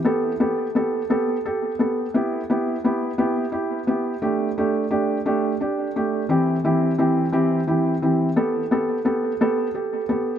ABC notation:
X:1
M:6/8
L:1/8
Q:3/8=58
K:G
V:1 name="Felt piano"
[B,GA] [B,GA] [B,GA] [B,GA] [GA] [B,GA] | [B,EG] [B,EG] [B,EG] [B,EG] [EG] [B,EG] | [A,DG] [A,DG] [A,DG] [A,DG] [DG] [A,DG] | [E,CEG] [E,CEG] [E,CEG] [E,CEG] [E,CEG] [E,CEG] |
[B,GA] [B,GA] [B,GA] [B,GA] [GA] [B,GA] |]